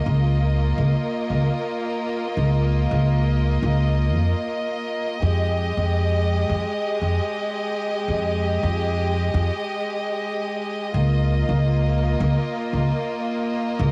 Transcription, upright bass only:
0.06 C#2
0.78 C#2
1.30 C#2
2.37 C#2
2.91 C#2
3.63 C#2
4.16 F2
5.22 F2
5.77 F2
6.49 F2
7.01 F2
8.08 F2
8.63 F2
9.34 F2
10.94 C#2
11.49 C#2
12.20 C#2
12.73 C#2
13.79 C#2

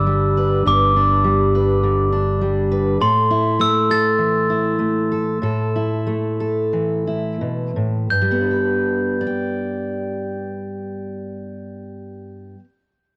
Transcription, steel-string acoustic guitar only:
Already playing: G2 D3 D4 B4
0.07 G3
0.37 B4
0.66 G2 B4
0.96 D4
1.24 G3
1.55 B4
1.83 D3
2.13 D4
2.42 G3
2.72 B4
3.01 A2 A4
3.31 E4
3.60 A3
3.90 A4
4.18 E3
4.50 E4
4.79 A3
5.12 A4
5.42 A2 A4
5.76 E4
6.07 A3
6.40 A4
6.73 E3
7.07 E4
7.41 B2
7.76 A2
8.11 G2
8.22 G3
8.31 B3
8.41 D4
8.51 B4
9.21 D5
9.27 G5

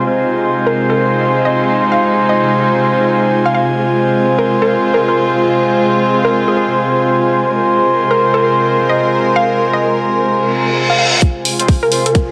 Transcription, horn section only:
0.06 G#3 C4 F4 C5
3.78 G#3 C4 F4 C5
7.50 G#3 C4 F4 C5
11.60 G#3 C4 F4 C5
11.92 G#3 C4 F4 C5

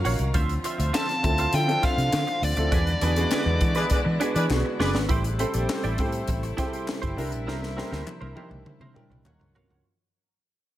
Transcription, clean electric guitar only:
0.05 F#4 C#5 F5
0.20 muted clean electric guitar stroke
0.34 F4 C5 E5
0.64 F4 C5 E5
0.78 F4 C5 E5
0.93 F4 C5 E5
1.09 muted clean electric guitar stroke
1.23 muted clean electric guitar stroke
1.39 F4 C5 E5
1.68 muted clean electric guitar stroke
1.83 F4 C5 E5
1.98 muted clean electric guitar stroke
2.13 muted clean electric guitar stroke
2.27 muted clean electric guitar stroke
2.57 muted clean electric guitar stroke
2.72 D4 G#4 B4
3.01 D4 G#4 B4
3.16 D4 G#4 B4
3.31 D4 G#4 B4
3.46 muted clean electric guitar stroke
3.61 muted clean electric guitar stroke
3.76 D4 G#4 B4
3.90 muted clean electric guitar stroke
4.05 muted clean electric guitar stroke
4.20 D4 G#4 B4
4.35 D4 G#4 B4
4.50 muted clean electric guitar stroke
4.65 muted clean electric guitar stroke
4.80 D4 G#4 B4
4.95 muted clean electric guitar stroke
5.09 E4 G4 C5
5.24 muted clean electric guitar stroke
5.39 E4 G4 C5
5.54 E4 G4 D5
5.69 muted clean electric guitar stroke
5.84 E4 G4 D5
5.98 E4 G4 C5
6.13 muted clean electric guitar stroke
6.28 muted clean electric guitar stroke
6.43 muted clean electric guitar stroke
6.57 E4 G4 C5
6.73 E4 G4 C5
6.88 muted clean electric guitar stroke
7.02 E4 G4 C5
7.17 E4 A#4 C5
7.32 muted clean electric guitar stroke
7.47 E4 A#4 C5
7.62 muted clean electric guitar stroke
7.77 E4 A#4 C5
7.91 E4 A#4 C5
8.06 muted clean electric guitar stroke
8.21 E4 A#4 C5
8.35 E4 A#4 C5
8.51 muted clean electric guitar stroke
8.66 muted clean electric guitar stroke
8.81 E4 A#4 C5
8.96 muted clean electric guitar stroke
9.10 muted clean electric guitar stroke
9.25 muted clean electric guitar stroke
9.40 muted clean electric guitar stroke
9.55 F#4 C#5 F5
9.70 F#4 C#5 F#5

